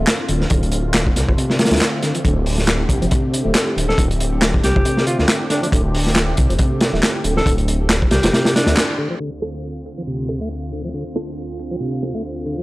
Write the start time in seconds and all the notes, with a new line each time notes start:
Already playing: D3 A3 C4 F4
0.07 snare, clap, closed hi-hat
0.28 D1 D3, closed hi-hat
0.41 F3, snare
0.50 D1 D3, kick, closed hi-hat
0.63 closed hi-hat
0.72 closed hi-hat
0.94 snare, clap, closed hi-hat
1.07 kick
1.16 C2, snare, closed hi-hat
1.28 F1 F3, kick
1.37 C3, closed hi-hat
1.50 snare
1.59 snare, closed hi-hat
1.65 snare, closed hi-hat
1.71 D2 A3, snare, closed hi-hat
1.76 snare, closed hi-hat
1.81 snare, clap, closed hi-hat
2.03 D3, snare, closed hi-hat
2.15 F3, closed hi-hat
2.24 D1 D3 G4, kick, closed hi-hat
2.46 open hi-hat
2.58 snare
2.68 snare, clap, closed hi-hat
2.89 C2, kick, closed hi-hat
3.02 F1 F3, closed hi-hat
3.11 C3, kick, closed hi-hat
3.34 closed hi-hat
3.45 D1 A3
3.55 snare, clap, closed hi-hat
3.76 D1 D3, closed hi-hat
3.88 F3 A4, snare
3.98 D1 D3, kick, closed hi-hat
4.11 closed hi-hat
4.20 closed hi-hat
4.41 snare, clap, closed hi-hat
4.54 kick
4.63 C2 G4, snare, closed hi-hat
4.76 F1 F3, kick
4.85 C3, closed hi-hat
4.97 snare
5.07 F4, closed hi-hat
5.19 D2 A3 F4, snare
5.28 snare, clap, closed hi-hat
5.50 D3 D4, snare, closed hi-hat
5.62 F3 D4, closed hi-hat
5.72 D1 D3, kick, closed hi-hat
5.95 open hi-hat
6.07 snare
6.16 snare, clap, closed hi-hat
6.37 C2, kick, closed hi-hat
6.49 F1 F3, closed hi-hat
6.59 C3, kick, closed hi-hat
6.81 snare, closed hi-hat
6.93 D1 A3, snare
7.03 snare, clap, closed hi-hat
7.24 D1 D3, closed hi-hat
7.36 F3 A4, snare
7.46 D1 D3, kick, closed hi-hat
7.58 closed hi-hat
7.68 closed hi-hat
7.89 snare, clap, closed hi-hat
8.02 kick
8.11 C2 G4, snare, closed hi-hat
8.23 F1 F3, snare, closed hi-hat
8.33 C3, snare, closed hi-hat
8.45 snare, closed hi-hat
8.55 D4, snare, closed hi-hat
8.66 D2 A3, snare, closed hi-hat
8.77 snare, clap, closed hi-hat
8.98 D3
9.10 F3
9.20 D2 D3 C4 F4, tambourine
9.42 C4 E4 F4 A4, tambourine
9.54 tambourine
9.64 tambourine
9.76 tambourine
9.86 tambourine
9.97 F3, tambourine
10.07 C3, tambourine
10.19 tambourine
10.29 C4 E4 F4 A4, tambourine
10.41 A3, tambourine
10.51 tambourine
10.72 D3, tambourine
10.84 F3, tambourine
10.94 D3, tambourine
11.07 tambourine
11.16 C4 E4 F4 A4, tambourine
11.28 tambourine
11.38 tambourine
11.50 tambourine
11.59 tambourine
11.71 F3, tambourine
11.80 C3, tambourine
11.93 tambourine
12.03 C4 E4 F4 A4, tambourine
12.14 A3, tambourine
12.25 tambourine
12.46 D3, tambourine
12.58 F3, tambourine